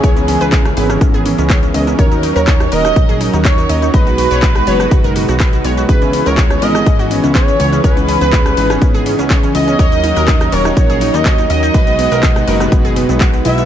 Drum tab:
HH |xxoxxxoxxxoxxxox|xxoxxxoxxxoxxxox|xxoxxxoxxxoxxxox|xxoxxxoxxxoxxxox|
SH |xx-xxx-xxx-xxx-x|xx-xxx-xxx-xxx-x|xx-xxx-xxx-xxx-x|xx-xxx-xxx-xxx-x|
CP |----x-------x---|----x-------x---|----x-------x---|----x-------x---|
SD |-----r-r--------|-----r-r--------|-----r-r--------|-----r-r--------|
BD |o---o---o---o---|o---o---o---o---|o---o---o---o---|o---o---o---o---|

HH |xxoxxxoxxxoxxxox|xxoxxxoxxxoxxxox|xxoxxxoxxxoxxxox|
SH |xx-xxx-xxx-xxx-x|xx-xxx-xxx-xxx-x|xx-xxx-xxx-xxx-x|
CP |----x-------x---|----x-------x---|----x-------x---|
SD |-----r-r--------|-----r-r--------|-----r-r--------|
BD |o---o---o---o---|o---o---o---o---|o---o---o---o---|